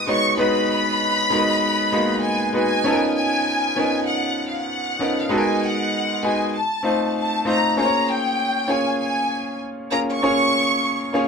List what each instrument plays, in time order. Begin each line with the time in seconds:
Already playing: grand piano G#3 B3 D#4 F#4 A#4 B4
0.07 grand piano G#3 B3 D#4 F#4 C#5, violin section C#6
0.37 grand piano G#3 B3 D#4 F#4 B4, violin section B5
1.30 grand piano G#3 B3 D#4 F#4 A#4
1.39 grand piano B4
1.92 grand piano G#3 A#3 B3 D#4 F#4
2.24 violin section G#5
2.53 grand piano G#3 B3 D#4 F#4 B4, violin section G#5
2.84 grand piano F3 B3 C#4 D#4 A4
2.92 grand piano A#4
3.16 violin section G#5
3.76 grand piano F3 B3 C#4 D#4 A#4
4.08 violin section F#5
4.49 violin section F5
4.57 violin section F#5
4.99 grand piano F3 B3 C#4 D#4 A#4
5.20 violin section F5
5.29 grand piano G#3 B3 D#4 F#4 A4, violin section G#5
5.38 grand piano A#4
5.64 violin section F#5
6.23 grand piano G#3 B3 D#4 F#4 G#4, violin section G#5
6.55 violin section A5
6.83 grand piano A3 C4 D#4 F4 C5
7.18 violin section A5
7.45 grand piano A3 C4 D#4 F4 C5, violin section A#5
7.77 grand piano A#3 C#4 F4 G#4 C5, violin section A#5
7.85 grand piano C#5
8.08 violin section G5
8.68 grand piano A#3 C#4 F4 G#4 C#5, violin section G#5
9.00 violin section G#5
9.91 grand piano A#3 C#4 F4 G#4 A#4, violin section A#5
10.11 violin section C#6
10.22 grand piano A#3 C#4 F4 G#4 C#5
11.13 grand piano A#3 C#4 F4 G#4 C#5